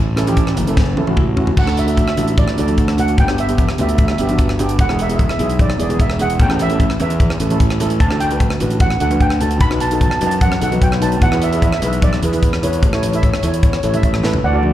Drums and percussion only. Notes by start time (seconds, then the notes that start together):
0.17 cross-stick, closed hi-hat, low conga
0.27 closed hi-hat, high conga
0.37 kick, closed hi-hat
0.47 cross-stick
0.57 closed hi-hat, high conga, low conga
0.67 closed hi-hat
0.77 kick, snare
0.97 high tom
1.07 high tom, high conga
1.17 kick, mid tom
1.37 floor tom
1.47 floor tom, high conga
1.57 kick, crash
1.67 cross-stick
1.77 closed hi-hat
1.88 closed hi-hat
1.97 kick, closed hi-hat, high conga
2.08 cross-stick
2.17 closed hi-hat, low conga
2.28 closed hi-hat
2.38 kick, closed hi-hat, high conga
2.48 cross-stick
2.58 closed hi-hat
2.68 closed hi-hat, high conga
2.78 kick, closed hi-hat
2.88 cross-stick
2.98 closed hi-hat, low conga
3.08 closed hi-hat
3.18 kick, closed hi-hat
3.28 cross-stick
3.38 closed hi-hat
3.49 closed hi-hat
3.58 kick, closed hi-hat, high conga
3.69 cross-stick
3.78 closed hi-hat, low conga
3.89 closed hi-hat
3.98 kick, closed hi-hat, high conga
4.08 cross-stick
4.18 closed hi-hat
4.29 closed hi-hat, high conga
4.38 kick, closed hi-hat
4.49 cross-stick
4.59 closed hi-hat, low conga
4.69 closed hi-hat
4.79 kick, closed hi-hat
4.89 cross-stick
4.99 closed hi-hat
5.09 closed hi-hat
5.19 kick, closed hi-hat, high conga
5.29 cross-stick
5.39 closed hi-hat, low conga
5.50 closed hi-hat
5.59 kick, closed hi-hat, high conga
5.70 cross-stick
5.80 closed hi-hat
5.90 closed hi-hat, high conga
6.00 kick, closed hi-hat
6.10 cross-stick
6.19 closed hi-hat, low conga
6.30 closed hi-hat
6.39 kick, closed hi-hat, low conga
6.50 cross-stick
6.59 closed hi-hat, high conga, low conga
6.70 closed hi-hat
6.80 kick, closed hi-hat, high conga
6.90 cross-stick
7.00 closed hi-hat, low conga
7.10 closed hi-hat
7.20 kick, closed hi-hat, high conga
7.30 cross-stick
7.40 closed hi-hat
7.50 closed hi-hat, high conga
7.60 kick, closed hi-hat
7.70 cross-stick
7.80 closed hi-hat, low conga
7.90 closed hi-hat
8.00 kick, closed hi-hat
8.11 cross-stick
8.20 closed hi-hat
8.31 closed hi-hat
8.40 kick, closed hi-hat, high conga
8.50 cross-stick
8.60 closed hi-hat, low conga
8.70 closed hi-hat
8.80 kick, closed hi-hat, high conga
8.90 cross-stick
9.00 closed hi-hat
9.11 closed hi-hat, high conga
9.20 kick, closed hi-hat
9.30 cross-stick
9.41 closed hi-hat, low conga
9.51 closed hi-hat
9.60 kick, closed hi-hat
9.71 cross-stick
9.80 closed hi-hat
9.91 closed hi-hat
10.01 kick, closed hi-hat, high conga
10.11 cross-stick
10.21 closed hi-hat, low conga
10.31 closed hi-hat
10.41 kick, closed hi-hat, high conga
10.52 cross-stick
10.62 closed hi-hat
10.72 closed hi-hat, high conga
10.82 kick, closed hi-hat
10.92 cross-stick
11.01 closed hi-hat, low conga
11.12 closed hi-hat
11.22 kick, closed hi-hat
11.32 cross-stick
11.42 closed hi-hat
11.53 closed hi-hat
11.62 kick, closed hi-hat, high conga
11.73 cross-stick
11.82 closed hi-hat, low conga
11.93 closed hi-hat
12.02 kick, closed hi-hat, high conga
12.13 cross-stick
12.23 closed hi-hat
12.33 closed hi-hat, high conga
12.43 kick, closed hi-hat
12.53 cross-stick
12.63 closed hi-hat, low conga
12.73 closed hi-hat
12.83 kick, closed hi-hat, low conga
12.93 cross-stick
13.03 closed hi-hat, high conga
13.13 closed hi-hat, high conga
13.23 kick, closed hi-hat, high conga
13.34 cross-stick
13.43 closed hi-hat, low conga
13.54 closed hi-hat
13.63 kick, closed hi-hat
13.73 cross-stick
13.83 closed hi-hat
13.94 closed hi-hat, high conga
14.03 kick, closed hi-hat
14.13 cross-stick, high conga
14.23 snare, low conga
14.33 floor tom, low conga
14.63 high conga